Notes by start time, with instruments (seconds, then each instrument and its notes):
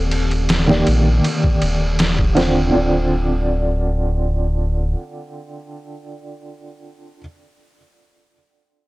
Already playing: analog synth bass D#1, felt piano D#3 A#3 G4 D5, string machine C4 A4
0.11 ride
0.31 ride
0.49 snare, ride
0.67 felt piano D#3 A#3 G4 D5, snare
0.87 analog synth bass A#1, ride
1.24 ride
1.44 kick
1.62 analog synth bass D#1, ride
1.99 snare, ride
2.19 kick
2.35 felt piano D3 C4 F4 C5, snare, ride
2.71 analog synth bass D1, felt piano D3 C4 F4
2.75 felt piano D5